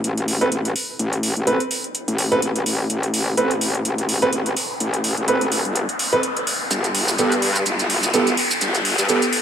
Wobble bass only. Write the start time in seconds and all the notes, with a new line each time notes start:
0.04 A1
0.52 A1
0.99 A1
1.36 A1
2.08 A1
2.42 A1
2.66 A1
2.90 A1
3.37 A1
3.85 A1
4.33 A1
4.80 A1
5.17 A1
5.41 A1
5.65 G1
6.71 G1
7.18 G2
7.66 G1
8.14 G1
8.61 G1
8.98 G2